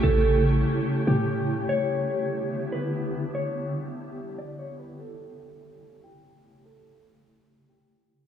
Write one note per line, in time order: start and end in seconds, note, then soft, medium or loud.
0.00 0.63 A1 loud
0.00 1.66 C#3 medium
0.00 1.66 A3 medium
0.00 1.66 C#4 medium
0.00 1.65 E4 medium
0.00 8.27 G4 medium
0.00 1.66 A4 medium
0.00 0.42 A4 loud
0.00 1.66 G5 medium
1.07 1.67 A2 loud
1.07 1.66 G4 medium
1.69 4.97 D3 medium
1.69 4.97 B3 medium
1.69 4.97 D4 medium
1.69 8.27 E4 medium
1.69 8.27 G4 medium
1.69 2.69 C#5 loud
1.69 4.97 E5 medium
2.72 3.31 B4 medium
3.35 3.74 C#5 loud
4.38 4.58 D5 medium
4.59 4.79 C#5 medium
4.80 4.99 B4 medium
5.00 8.27 C#3 medium
5.00 8.27 A3 medium
5.00 6.00 A4 loud
5.00 8.27 C#5 medium
6.04 6.62 G4 medium
6.65 7.05 A4 loud
7.69 8.27 G4 medium